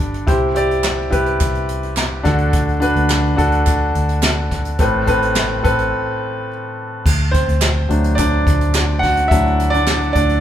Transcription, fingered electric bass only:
Already playing: G1
0.27 C2
1.13 C2
1.41 C2
2.25 D2
2.96 D2
3.38 D2
3.95 D2
4.79 A1
5.65 A1
7.06 D2
7.47 D2
7.90 D2
8.47 D2
9.31 D2
10.16 D2

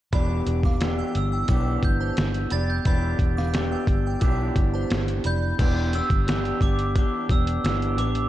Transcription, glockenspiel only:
1.17 E6
1.85 G6
2.52 A6
2.70 G6
5.27 G6
5.95 E6
6.62 D6
6.97 D6
7.31 E6
7.64 E6
7.99 D6

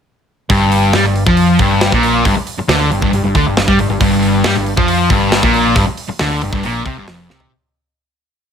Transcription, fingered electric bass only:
0.50 G1
0.94 G2
1.04 G1
1.26 F2
1.59 G1
1.92 A#1
2.25 G1
2.36 muted fingered electric bass stroke
2.58 muted fingered electric bass stroke
2.68 D2
2.91 G1
3.02 G1
3.13 G1
3.24 G1
3.35 D2
3.47 G1
3.57 G1
3.67 G2
3.78 G1
3.89 G1
4.01 G1
4.44 G2
4.56 G1
4.77 F2
5.10 G1
5.43 A#1
5.76 G1
6.09 muted fingered electric bass stroke
6.20 D2
6.43 G1
6.53 G1
6.65 A#1
6.86 C2
6.97 G1
7.08 F1
7.31 C2

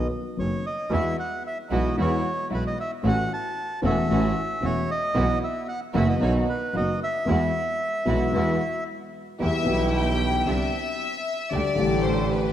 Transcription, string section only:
0.91 G#3 E4 F#4
1.70 G#3 E4 F#4
1.97 G#3 E4 F#4
2.50 G#3 E4 F#4
3.03 A3 C#4 F#4
3.83 A3 C#4 F#4
4.10 A3 C#4 F#4
4.62 A3 C#4 F#4
5.14 B3 E4 F#4
5.94 B3 E4 F#4
6.20 B3 D#4 F#4
6.74 B3 D#4 F#4
7.28 G#3 E4 F#4
8.07 G#3 E4 F#4
8.33 G#3 E4 F#4
9.39 B3 E4 G4
9.66 B3 E4 G4
10.46 C4 D4 G4
11.53 A3 D4 G4
11.78 A3 D4 G4

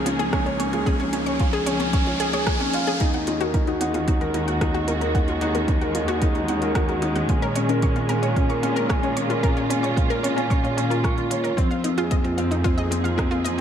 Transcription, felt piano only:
Already playing: C#4 G#4 C#5
0.06 C#4
0.19 C#4
0.32 C#4
0.46 C#5
0.59 C#4
0.73 G#4
0.87 C#4
1.00 C#4
1.13 C#4
1.26 C#5
1.40 C#4
1.54 G#4
1.67 C#4
1.80 C#4
1.93 C#4
2.07 C#5
2.20 G#4
2.33 G#4
2.47 G#5
2.60 C#4
2.74 F5
2.87 C#4
3.01 D#4
3.14 D#4
3.28 D#4
3.41 A#4
3.54 D#4
3.68 F#4
3.81 D#4
3.94 D#4
4.08 D#4
4.22 A#4
4.35 D#4
4.48 F#4
4.62 D#4
4.75 D#4
4.89 D#4
5.02 A#4
5.15 D#4
5.28 F#4
5.42 D#4
5.55 D#4
5.69 D#4
5.82 A#4
5.95 D#4
6.09 F#4
6.22 D#4
6.35 D#4
6.49 D#4
6.62 A#4
6.88 F#4
7.02 D#4
7.16 D#4
7.29 C#4
7.43 C#5
7.56 C#4
7.69 A#4
7.83 C#4
7.96 C#4
8.10 C#4
8.23 C#5
8.37 C#4
8.50 A#4
8.63 C#4
8.76 C#4
8.90 C#4
9.03 C#5
9.17 C#4
9.31 A#4
9.44 C#4
9.57 C#4
9.71 C#4
9.84 C#5
9.97 C#4
10.10 A#4
10.24 C#4
10.37 C#4
10.51 C#4
10.64 C#5
10.77 C#4
10.91 F4
11.04 C#6
11.18 F4
11.31 C#5
11.45 C#5
11.58 C4
11.71 C4
11.85 C4
11.98 G#4
12.12 C4
12.25 F4
12.38 C4
12.52 C4
12.65 C4
12.78 G#4
12.92 C4
13.05 F4
13.19 C4
13.32 C4
13.46 C4

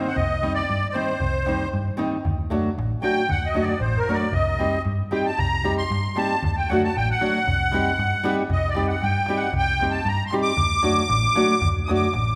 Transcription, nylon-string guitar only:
0.42 D#3 G3 C4 D#4
0.94 D#3 G3 C4 D#4
1.46 D#3 G3 C4 D#4
1.97 D#3 G3 C4 D#4
2.50 F#3 A3 D4 F#4
3.02 F#3 A3 D4 F#4
3.54 F#3 A3 D4 F#4
4.09 F#3 A3 D4 F#4
4.59 G3 C4 D#4 G4
5.11 G3 C4 D#4 G4
5.64 G3 C4 D#4 G4
6.16 G3 C4 D#4 G4
6.70 F#3 A3 D4 F#4
7.21 F#3 A3 D4 F#4
7.72 G3 C4 D#4 G4
8.24 G3 C4 D#4 G4
8.75 G3 C4 D#4 G4
9.28 G3 C4 D#4 G4
9.81 G3 C4 D#4 G4
10.32 G3 C4 D#4 G4
10.83 F#3 A3 D4 F#4
11.35 F#3 A3 D4 F#4
11.89 F#3 A3 D4 F#4

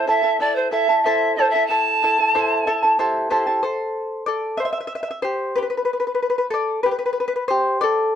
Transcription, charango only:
0.07 E4 A4 E5 A5
0.23 E4 A4 A5
0.40 E4 A4 E5 A5
0.71 E4 A4 E5 A5
0.89 E4 A4 A5
1.06 E4 A4 C5 E5 A5
1.38 E4 A4 E5 A5
1.54 E4 A4 A5
1.70 E4 A4 E5 A5
2.03 E4 A4 E5 A5
2.19 E4 A4 A5
2.35 E4 A4 C5 E5 A5
2.67 E4 A4 E5 A5
2.83 E4 A4 A5
2.99 E4 G4 A4 C5 E5 A5
3.30 E4 G4 A4 C5 E5 A5
3.47 E4 A4 A5
3.63 A4 C5
4.26 A4 D5
4.57 C5 E5
4.65 E5
4.73 E5
4.81 E5
4.87 E5
4.95 E5
5.03 E5
5.11 E5
5.22 G4 C5
5.56 G4 B4
5.62 B4
5.70 B4
5.77 B4
5.85 B4
5.93 B4
6.00 B4
6.07 B4
6.15 B4
6.22 B4
6.30 B4
6.38 B4
6.50 A4 D5
6.83 G4 B4
6.91 B4
6.99 B4
7.06 B4
7.13 B4
7.20 B4
7.28 B4
7.36 B4
7.48 G4 C5
7.81 A4 D5

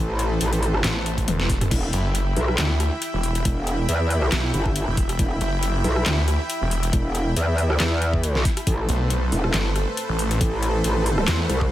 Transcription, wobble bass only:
Already playing: A1
0.41 A1
1.71 E1
2.36 B1
3.45 E1
3.89 E2
4.54 G1
5.19 E1
5.84 B1
6.93 E1
7.36 E2
7.80 E2
8.67 A1
9.32 E1
10.41 A1
10.84 A1
11.50 C2

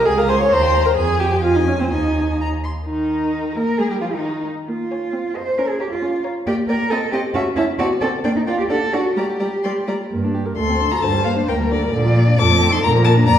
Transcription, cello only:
0.07 C#2
0.52 D#2
0.97 F2
1.91 D#2
2.87 D#4
3.56 A#4
3.78 G#4
3.91 G4
4.01 F4
4.13 D#4
4.69 F4
5.36 C5
5.58 A#4
5.69 G#4
5.80 G4
5.91 F4
6.46 G4
6.68 A#4
6.90 A4
7.12 G4
7.34 F#4
7.56 E4
7.79 F#4
8.01 A4
8.24 D4
8.36 D#4
8.47 F4
8.59 G4
8.70 A4
8.93 F#4
9.16 G4
10.11 G2
10.57 D2
11.02 G2
11.48 D2
11.93 A#2
12.39 F2
12.83 A#2
13.28 F2

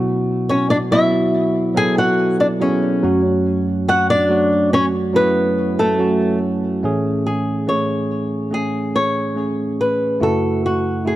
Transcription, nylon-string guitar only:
0.49 C#4 C#5
0.70 D4 D5
0.92 E4 E5
1.77 G#4 G#5
1.98 F#4 F#5
2.40 D4 D5
2.61 C#4 C#5
3.88 F#4 F#5
4.10 D4 D5
4.73 C#4 C#5
5.16 B3 B4
5.79 A3 A4
7.26 G#4
7.69 C#5
8.54 G#4
8.96 C#5
9.81 B4
10.23 A4
10.66 F#4
11.07 G#4

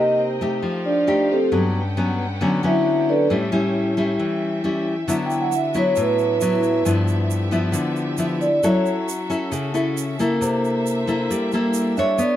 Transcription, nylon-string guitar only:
Already playing: C3 A#3 D#4 G4
0.41 A3 D#4 G4
0.63 F3
1.07 A3 D#4 G4
1.52 G2 F#3 B3 C#4
1.97 F#3 B3 C#4
2.41 D3 F#3 B3 C#4
2.63 F#3 B3 C#4
3.30 A2 G3 C#4 E4
3.52 G3 C#4 E4
3.97 G3 C#4 E4
4.20 E3
4.64 G3 C#4 E4
5.08 D3 F#3 B3 E4
5.75 F#3 B3 E4
5.97 A2
6.41 F#3 B3 E4
6.85 G2 F3 B3 E4
7.51 F3 B3 E4
7.72 D3
8.18 F3 B3 E4
8.63 F#3 C#4 E4 A4
9.30 C#4 E4 A4
9.52 C#3
9.74 C#4 E4 A4
10.19 A#3 E4 A4
10.41 C3
11.07 A#3 E4 A4
11.30 G3
11.53 A#3 E4 A4
11.98 D4 A4 C#5
12.18 B3

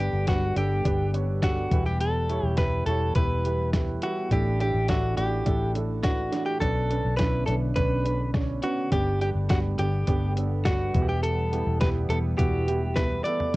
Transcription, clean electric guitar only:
0.00 G4
0.28 F#4
0.57 G4
1.44 F#4
1.86 G4
2.01 A4
2.47 G4
2.58 B4
2.86 A4
3.16 B4
4.03 F#4
4.32 G4
4.61 G4
4.90 F#4
5.17 G4
6.04 F#4
6.46 G4
6.60 A4
7.17 B4
7.46 A4
7.76 B4
8.64 F#4
8.92 G4
9.22 G4
9.50 F#4
9.79 G4
10.65 F#4
11.09 G4
11.23 A4
11.81 B4
12.10 A4
12.38 G4
12.96 B4
13.24 D5

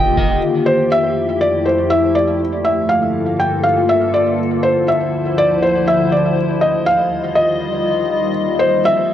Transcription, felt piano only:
Already playing: D#5
0.66 C5
0.92 E5
1.41 D5
1.66 C5
1.90 E5
2.15 D5
2.64 E5
2.89 F5
3.40 G5
3.63 F5
3.89 E5
4.14 D5
4.63 C5
4.88 E5
5.38 D5
5.62 C5
5.87 E5
6.12 D5
6.61 D#5
6.86 F5
7.36 D#5
8.59 C5
8.85 E5

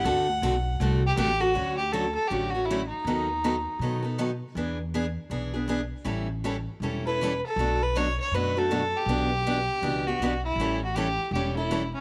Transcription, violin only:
Already playing: F#5
1.06 G4
1.17 G4
1.40 F#4
1.77 G4
1.92 A4
2.15 A4
2.27 G4
2.50 F#4
2.65 E4
2.87 D#4
7.06 B4
7.46 A4
7.83 B4
7.97 C#5
8.20 C#5
8.34 B4
8.58 A4
8.97 G4
10.07 F#4
10.45 E4
10.85 F#4
10.95 G4
11.33 G4
11.56 E4
11.95 C#4

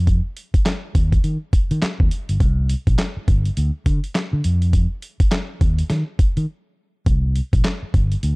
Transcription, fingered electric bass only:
Already playing: F2
0.54 muted fingered electric bass stroke
0.95 D#2
1.24 D#3
1.53 muted fingered electric bass stroke
1.71 D#3
1.82 muted fingered electric bass stroke
2.00 D#2
2.29 G1
2.40 C2
2.87 A#1
3.17 muted fingered electric bass stroke
3.28 G1
3.57 D2
3.86 D3
4.33 D3
4.45 F2
5.20 muted fingered electric bass stroke
5.61 D#2
5.90 D#3
6.19 muted fingered electric bass stroke
6.37 D#3
7.07 C2
7.53 A#1
7.83 muted fingered electric bass stroke
7.94 G1
8.23 D2

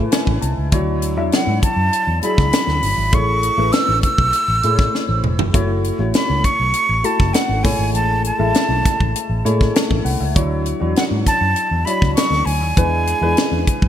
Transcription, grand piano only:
Already playing: G#3 A3 E4 G#4 B4 C#5 E5
0.12 G#5
0.42 A5
0.72 F#3 D4 E4 C#5
1.16 F#3 D4 E4 E5
2.22 F#3 D4 E4 G#4
3.12 A3 E4 G#4 C#5
3.58 A3 E4 G#4 B4
4.64 A3 E4 G#4 C5
4.71 C#5
5.53 A3 E4 F#4 C#5
5.99 A3 E4 F#4 C#5
7.04 A3 E4 F#4 A4
7.64 G#3 A3 E4 C#5
8.39 G#3 A3 E4 E5
9.45 G#3 A3 E4 C#5
9.74 A5
10.05 F#5
10.21 E5
10.35 F#3 D4 E4 C#5
10.80 F#3 D4 E4 C#5
11.86 F#3 D4 E4 C#5
12.77 G#3 D4 E4 B4
13.21 G#3 D4 E4 B4

